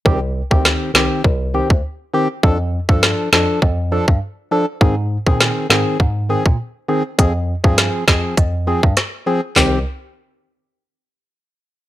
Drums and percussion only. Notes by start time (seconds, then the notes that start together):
0.06 kick
0.51 kick
0.65 snare
0.95 snare
1.24 kick
1.70 kick
2.43 kick
2.89 kick
3.03 snare
3.33 snare
3.62 kick
4.08 kick
4.81 kick
5.27 kick
5.41 snare
5.70 snare
6.00 kick
6.46 kick
7.19 kick, closed hi-hat
7.64 kick
7.78 snare, closed hi-hat
8.08 kick, snare
8.37 kick, closed hi-hat
8.83 kick
8.97 cross-stick, snare, closed hi-hat
9.56 snare, clap, floor tom